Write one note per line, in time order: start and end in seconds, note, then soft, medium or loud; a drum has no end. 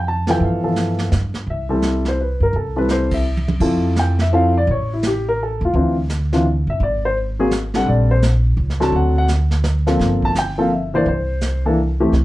0.00 0.36 F2 medium
0.08 0.29 A5 medium
0.27 0.62 E3 medium
0.27 0.62 F3 medium
0.27 0.62 B3 medium
0.27 0.63 A4 medium
0.27 0.42 G5 medium
0.27 snare soft
0.40 1.08 G2 medium
0.40 0.96 F5 medium
0.40 brush sweep soft
0.63 1.10 E3 medium
0.63 1.09 F3 medium
0.63 1.10 B3 medium
0.63 1.10 A4 medium
0.76 snare medium
0.76 hi-hat pedal soft
0.99 snare soft
1.12 1.45 G2 medium
1.12 snare medium
1.12 hi-hat pedal medium
1.34 snare soft
1.47 2.37 C2 medium
1.47 2.03 E5 medium
1.47 brush sweep soft
1.69 2.16 G3 medium
1.69 2.16 C4 medium
1.69 2.16 E4 medium
1.69 2.16 A4 medium
1.82 snare medium
1.82 hi-hat pedal soft
2.05 2.20 C5 medium
2.05 snare soft
2.21 2.42 B4 medium
2.40 2.52 G2 medium
2.40 2.55 A#4 medium
2.53 3.56 C2 medium
2.53 2.75 A4 medium
2.53 brush sweep soft
2.76 3.23 G3 medium
2.76 3.23 C4 medium
2.76 3.23 E4 soft
2.76 3.23 A4 medium
2.76 2.90 B4 medium
2.89 3.12 C5 medium
2.89 snare medium
2.89 hi-hat pedal soft
3.11 3.46 E5 medium
3.11 kick medium
3.11 ride medium
3.37 high tom soft
3.48 high tom medium
3.60 4.63 F2 medium
3.60 4.15 F3 medium
3.60 4.15 C4 medium
3.60 4.15 E4 medium
3.60 4.15 A4 medium
3.60 brush sweep soft
3.60 kick medium
3.60 crash medium
3.96 4.20 G5 medium
3.96 snare medium
3.96 hi-hat pedal medium
4.19 4.33 E5 medium
4.19 snare soft
4.33 4.53 F3 medium
4.33 4.53 C4 medium
4.33 4.53 E4 medium
4.33 4.53 A4 medium
4.33 4.55 F5 medium
4.57 4.69 D5 medium
4.67 5.57 A1 medium
4.67 4.91 C#5 medium
4.67 brush sweep soft
4.93 5.04 E4 medium
5.03 snare medium
5.03 hi-hat pedal medium
5.07 5.27 G4 medium
5.29 5.40 A#4 medium
5.43 5.63 A4 medium
5.61 5.73 D#2 medium
5.65 5.74 F4 medium
5.74 6.63 D2 medium
5.74 5.95 E3 medium
5.74 5.95 C4 medium
5.74 5.95 D4 medium
5.74 5.95 F4 medium
5.74 brush sweep soft
6.09 snare medium
6.09 hi-hat pedal medium
6.33 6.44 E3 medium
6.33 6.44 C4 medium
6.33 6.45 D4 medium
6.33 6.45 F4 medium
6.33 snare soft
6.67 6.79 G1 medium
6.67 6.81 E5 medium
6.80 7.83 G#1 medium
6.80 7.04 D5 medium
6.80 brush sweep soft
7.05 7.17 C5 medium
7.39 7.51 F#3 medium
7.39 7.51 A#3 medium
7.39 7.51 C4 medium
7.39 7.51 G#4 medium
7.51 snare medium
7.51 hi-hat pedal medium
7.74 8.20 G3 medium
7.74 8.20 C4 medium
7.74 8.21 D4 medium
7.74 8.21 A4 medium
7.74 7.88 F#5 loud
7.74 snare soft
7.86 8.54 A#1 medium
7.86 8.10 D5 medium
7.86 brush sweep soft
8.11 8.23 C5 medium
8.22 snare medium
8.22 hi-hat pedal medium
8.57 8.90 C#2 medium
8.70 snare soft
8.80 9.26 F#3 medium
8.80 9.26 C4 medium
8.80 9.27 D4 medium
8.80 9.26 A4 medium
8.80 8.94 A5 medium
8.80 snare soft
8.92 9.95 D2 medium
8.92 9.17 F#5 medium
8.92 brush sweep soft
9.18 9.25 F#5 medium
9.28 snare medium
9.28 hi-hat pedal medium
9.51 snare soft
9.63 snare medium
9.63 hi-hat pedal medium
9.87 10.33 F3 medium
9.87 10.33 A#3 medium
9.87 10.33 C4 medium
9.87 10.33 A4 medium
9.87 snare soft
9.99 11.02 G1 medium
9.99 brush sweep medium
9.99 snare soft
10.22 10.36 A5 medium
10.22 kick medium
10.35 10.59 G5 medium
10.35 snare medium
10.35 hi-hat pedal medium
10.58 10.70 F3 medium
10.58 10.70 A#3 medium
10.58 10.70 C4 medium
10.58 10.70 A4 medium
10.58 10.72 F5 medium
10.74 10.94 E5 medium
10.94 11.05 E3 medium
10.94 11.06 A#3 medium
10.94 11.06 D4 medium
10.94 11.06 C5 medium
10.94 11.07 D5 medium
11.06 12.09 C2 medium
11.06 11.62 C5 medium
11.06 brush sweep medium
11.41 snare medium
11.41 hi-hat pedal medium
11.66 11.77 E3 medium
11.66 11.77 A#3 medium
11.66 11.77 D4 medium
11.66 11.77 A4 medium
12.00 12.12 E3 medium
12.00 12.12 A3 medium
12.00 12.12 C4 medium
12.00 12.12 G4 medium
12.12 12.25 C2 medium
12.12 brush sweep soft
12.12 snare soft